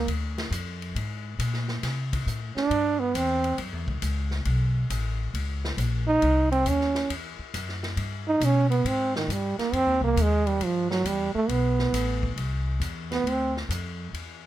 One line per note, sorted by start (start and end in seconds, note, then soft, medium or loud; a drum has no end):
0.07 0.50 D2 medium
0.07 ride medium
0.38 snare medium
0.38 ride soft
0.50 0.93 F2 medium
0.50 hi-hat pedal medium
0.50 ride medium
0.82 ride soft
0.95 1.37 G#2 medium
0.95 ride medium
1.39 1.81 A#2 medium
1.39 hi-hat pedal medium
1.39 ride medium
1.53 snare soft
1.68 snare soft
1.83 2.25 C3 medium
1.83 snare soft
1.83 ride medium
2.13 kick medium
2.13 ride medium
2.26 2.54 A2 medium
2.26 hi-hat pedal medium
2.56 3.01 D4 loud
2.56 muted upright bass stroke soft
2.56 snare soft
2.70 3.13 G2 medium
2.70 ride medium
2.99 3.18 B3 medium
3.14 3.57 E2 medium
3.14 3.59 C4 medium
3.14 hi-hat pedal medium
3.14 ride medium
3.44 ride medium
3.58 3.73 F#2 medium
3.58 ride medium
3.73 3.86 E2 medium
3.87 4.00 C#2 medium
3.87 kick medium
4.02 4.45 C#2 medium
4.02 hi-hat pedal medium
4.02 ride medium
4.31 snare soft
4.45 4.88 B1 medium
4.45 ride medium
4.90 5.32 A1 medium
4.90 hi-hat pedal medium
4.90 ride medium
5.33 5.76 C#2 medium
5.33 ride medium
5.65 snare medium
5.77 6.20 A#1 medium
5.77 hi-hat pedal medium
5.77 ride medium
6.07 6.48 D#4 loud
6.22 6.65 C2 medium
6.22 ride medium
6.52 6.71 C4 loud
6.52 ride soft
6.65 7.08 D#2 medium
6.65 7.11 C#4 medium
6.65 hi-hat pedal medium
6.65 ride medium
6.81 snare soft
6.95 snare soft
6.95 ride soft
7.10 7.37 E2 medium
7.10 ride medium
7.39 muted upright bass stroke soft
7.54 7.96 F#2 medium
7.54 hi-hat pedal medium
7.54 ride medium
7.69 snare soft
7.83 snare medium
7.83 ride soft
7.96 8.39 G2 medium
7.96 ride medium
8.28 8.46 D#4 loud
8.40 8.83 B2 loud
8.40 hi-hat pedal medium
8.40 ride medium
8.45 8.69 C#4 loud
8.70 8.88 B3 medium
8.70 ride medium
8.85 9.27 G#2 medium
8.85 9.16 C4 loud
8.85 ride medium
9.16 9.33 D#3 medium
9.16 snare medium
9.28 9.56 G2 medium
9.28 9.58 G3 medium
9.28 hi-hat pedal medium
9.28 ride medium
9.58 9.75 A#3 loud
9.58 muted upright bass stroke soft
9.58 snare soft
9.58 ride soft
9.72 9.86 F2 medium
9.72 10.03 C4 loud
9.72 ride medium
9.86 10.00 D#2 medium
10.01 10.15 C2 medium
10.01 10.23 A#3 medium
10.16 10.59 D#2 loud
10.16 hi-hat pedal medium
10.16 ride medium
10.22 10.49 G#3 loud
10.47 10.66 G3 medium
10.47 ride soft
10.60 11.03 G2 medium
10.60 ride medium
10.65 10.90 F3 medium
10.90 11.08 F#3 medium
10.90 snare medium
11.04 11.32 E2 medium
11.04 11.34 G3 medium
11.04 hi-hat pedal medium
11.04 ride medium
11.35 11.51 A3 loud
11.35 muted upright bass stroke soft
11.48 11.91 B1 medium
11.48 12.37 B3 medium
11.48 ride medium
11.79 snare soft
11.92 12.35 A1 medium
11.92 hi-hat pedal medium
11.92 ride medium
12.23 kick medium
12.36 12.79 C2 medium
12.36 ride medium
12.80 13.23 E2 medium
12.80 hi-hat pedal medium
12.80 ride medium
13.12 13.30 B3 medium
13.12 snare soft
13.12 ride soft
13.24 13.67 D2 medium
13.24 ride medium
13.28 13.56 C4 medium
13.57 snare soft
13.69 14.11 F2 medium
13.69 hi-hat pedal medium
13.69 ride medium
14.13 14.46 E2 medium
14.13 ride medium